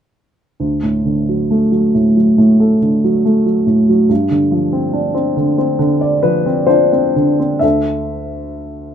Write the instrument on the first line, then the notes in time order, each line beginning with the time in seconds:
grand piano
0.60 D2
0.83 A2
1.05 D3
1.29 F#3
1.51 A3
1.71 F#3
1.95 A2
2.16 F#3
2.38 A2
2.60 A4
2.82 D3
3.04 F#3
3.25 A3
3.46 F#3
3.67 A2
3.89 F#3
4.09 G2
4.31 D3
4.51 F3
4.73 C4
4.93 D4
5.14 C4
5.37 D3
5.58 C4
5.79 D3
6.01 D5
6.23 F3 B4
6.46 C4
6.67 D4 F4 C5
6.92 C4
7.16 D3
7.39 C4
7.59 D2 A4 E5